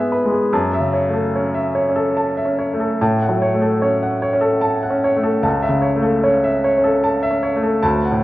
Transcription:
0.00 0.48 G#2 soft
0.00 0.54 E3 soft
0.00 0.25 G#3 soft
0.00 0.54 B3 soft
0.00 0.32 G#4 soft
0.00 0.12 B4 medium
0.00 0.55 E5 soft
0.00 0.54 G#5 soft
0.12 0.44 B4 soft
0.25 0.52 G#3 soft
0.32 0.52 G#4 soft
0.53 2.96 F#2 medium
0.53 0.85 A5 medium
0.73 1.06 E5 soft
0.80 1.23 C#3 soft
0.93 1.26 C#5 soft
1.08 1.51 A3 soft
1.13 1.46 A4 soft
1.35 1.78 C#4 soft
1.35 1.67 C#5 soft
1.54 1.87 E5 soft
1.75 2.07 C#5 medium
1.89 2.33 C#4 medium
1.96 2.29 A4 medium
2.16 2.50 A5 medium
2.37 2.71 E5 soft
2.45 2.90 C#4 soft
2.58 2.92 C#5 medium
2.73 3.01 A3 soft
2.80 3.01 A4 soft
3.01 5.42 A2 medium
3.01 3.34 A5 medium
3.23 3.55 F#5 medium
3.29 3.72 F#3 soft
3.42 3.74 C#5 medium
3.54 3.97 A3 soft
3.62 3.94 A4 soft
3.82 4.24 C#4 soft
3.82 4.14 C#5 medium
4.03 4.34 F#5 medium
4.22 4.54 C#5 medium
4.33 4.78 C#4 medium
4.41 4.74 A4 medium
4.61 4.95 A5 medium
4.83 5.16 F#5 soft
4.90 5.34 C#4 medium
5.04 5.37 C#5 medium
5.16 5.44 A3 medium
5.23 5.44 A4 medium
5.42 7.79 C#2 medium
5.42 5.76 A5 medium
5.62 5.96 E5 medium
5.69 6.14 C#3 medium
5.82 6.16 C#5 medium
5.96 6.41 A3 medium
6.03 6.37 A4 soft
6.24 6.68 C#4 medium
6.24 6.58 C#5 medium
6.44 6.78 E5 medium
6.64 6.97 C#5 medium
6.78 7.21 C#4 medium
6.84 7.17 A4 medium
7.03 7.36 A5 medium
7.22 7.55 E5 medium
7.30 7.73 C#4 soft
7.43 7.75 C#5 medium
7.56 7.84 A3 medium
7.63 7.84 A4 soft
7.83 8.24 D2 medium
7.83 8.16 A5 medium
8.05 8.24 F#5 medium
8.12 8.24 A2 medium

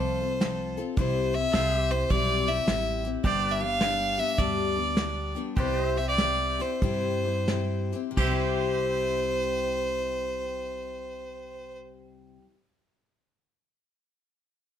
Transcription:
0.00 0.76 C2 medium
0.00 0.21 F3 medium
0.00 0.22 C4 medium
0.00 0.21 F4 medium
0.00 0.96 F4 medium
0.00 0.19 A4 medium
0.00 0.95 A4 medium
0.00 0.78 C5 medium
0.00 0.95 C5 medium
0.20 0.40 C4 soft
0.20 0.41 F4 soft
0.20 0.40 A4 soft
0.40 0.78 F3 medium
0.40 0.78 C4 medium
0.40 0.78 F4 medium
0.40 0.76 A4 medium
0.40 snare loud
0.40 closed hi-hat medium
0.77 0.97 C4 soft
0.77 0.98 F4 medium
0.77 0.97 A4 medium
0.77 closed hi-hat medium
0.97 1.43 C2 medium
0.97 1.34 C3 medium
0.97 1.35 G3 medium
0.97 1.35 C4 medium
0.97 1.34 E4 medium
0.97 1.33 G4 medium
0.97 1.36 C5 medium
0.97 kick loud
0.97 closed hi-hat medium
1.34 1.53 C4 soft
1.34 1.54 E4 medium
1.34 1.54 G4 medium
1.34 1.93 E5 loud
1.53 2.02 C2 medium
1.53 1.91 G3 soft
1.53 1.91 C4 medium
1.53 1.91 E4 medium
1.53 1.89 G4 medium
1.53 1.78 A4 medium
1.53 3.23 C5 medium
1.53 1.75 F5 medium
1.53 snare loud
1.53 closed hi-hat medium
1.75 3.22 G4 medium
1.75 3.23 E5 medium
1.91 2.10 C4 soft
1.91 2.10 E4 soft
1.91 2.11 G4 soft
1.91 2.12 C5 medium
1.91 closed hi-hat medium
2.10 2.59 B1 medium
2.10 2.47 C3 medium
2.10 2.48 G3 medium
2.10 2.48 C4 medium
2.10 2.48 E4 medium
2.10 2.46 G4 medium
2.10 2.49 D5 loud
2.10 kick loud
2.10 closed hi-hat medium
2.47 2.67 C4 soft
2.47 2.68 E4 soft
2.47 2.67 G4 soft
2.47 3.05 E5 medium
2.67 3.15 A1 medium
2.67 3.04 G3 medium
2.67 3.05 C4 medium
2.67 3.05 E4 medium
2.67 3.03 G4 medium
2.67 snare loud
2.67 closed hi-hat medium
3.04 3.25 C4 soft
3.04 3.25 E4 soft
3.04 3.24 G4 soft
3.04 closed hi-hat medium
3.24 4.16 G1 medium
3.24 3.61 G2 medium
3.24 3.61 D3 medium
3.24 3.62 G3 medium
3.24 3.62 B3 medium
3.24 3.61 D4 medium
3.24 5.55 G4 medium
3.24 3.60 G4 medium
3.24 3.46 C5 medium
3.24 3.53 D5 medium
3.24 5.56 D5 medium
3.24 kick loud
3.24 closed hi-hat medium
3.46 5.55 B4 medium
3.51 3.63 E5 medium
3.61 3.79 G3 soft
3.61 3.80 B3 soft
3.61 3.81 D4 medium
3.61 3.81 G4 medium
3.61 4.20 F5 medium
3.81 4.18 G3 medium
3.81 4.19 B3 medium
3.81 4.18 D4 medium
3.81 4.17 G4 medium
3.81 snare loud
3.81 closed hi-hat medium
4.18 4.38 G3 soft
4.18 4.38 B3 soft
4.18 4.39 D4 medium
4.18 4.38 G4 soft
4.18 4.40 E5 loud
4.18 closed hi-hat medium
4.38 5.34 D2 medium
4.38 4.76 G2 medium
4.38 4.77 D3 medium
4.38 4.77 G3 medium
4.38 4.77 B3 medium
4.38 4.75 D4 medium
4.38 4.74 G4 medium
4.38 5.36 D5 medium
4.38 kick loud
4.38 closed hi-hat medium
4.76 4.95 G3 soft
4.76 4.96 B3 soft
4.76 4.97 D4 medium
4.76 4.96 G4 medium
4.96 5.35 G3 medium
4.96 5.36 B3 medium
4.96 5.35 D4 medium
4.96 5.34 G4 medium
4.96 snare loud
4.96 closed hi-hat medium
5.35 5.56 G3 soft
5.35 5.57 B3 medium
5.35 5.57 D4 medium
5.35 5.56 G4 medium
5.35 closed hi-hat medium
5.57 6.58 C2 medium
5.57 5.97 C3 medium
5.57 5.97 G3 medium
5.57 5.97 C4 medium
5.57 5.97 E4 medium
5.57 8.15 G4 medium
5.57 5.95 G4 medium
5.57 5.81 B4 medium
5.57 5.99 C5 medium
5.57 5.76 D5 medium
5.57 kick loud
5.57 closed hi-hat medium
5.76 5.88 D#5 medium
5.81 8.15 C5 medium
5.88 8.16 E5 medium
5.96 6.18 C4 soft
5.96 6.19 E4 soft
5.96 6.18 G4 medium
5.96 6.08 E5 medium
6.09 6.63 D5 loud
6.18 6.60 G3 medium
6.18 6.60 C4 medium
6.18 6.60 E4 medium
6.18 6.58 G4 medium
6.18 snare loud
6.18 closed hi-hat medium
6.59 6.82 C4 soft
6.59 6.82 E4 soft
6.59 6.82 G4 medium
6.59 7.94 C5 medium
6.59 closed hi-hat medium
6.82 7.91 G2 medium
6.82 7.25 C3 medium
6.82 7.25 G3 medium
6.82 7.26 C4 medium
6.82 7.25 E4 medium
6.82 7.23 G4 medium
6.82 kick loud
6.82 closed hi-hat medium
7.25 7.47 C4 soft
7.25 7.48 E4 soft
7.25 7.48 G4 soft
7.47 7.93 G3 medium
7.47 7.93 C4 medium
7.47 7.93 E4 medium
7.47 7.91 G4 medium
7.47 snare loud
7.47 closed hi-hat medium
7.92 8.19 C4 soft
7.92 8.18 E4 soft
7.92 8.17 G4 medium
7.92 closed hi-hat medium
8.11 12.38 C3 medium
8.17 12.40 C2 medium
8.17 12.44 G3 medium
8.17 11.77 G4 medium
8.17 11.77 C5 medium
8.17 11.78 C5 medium
8.17 11.79 E5 medium
8.17 kick medium
8.17 crash medium
8.22 12.49 C4 medium
8.27 12.54 E4 medium
8.31 12.58 G4 medium

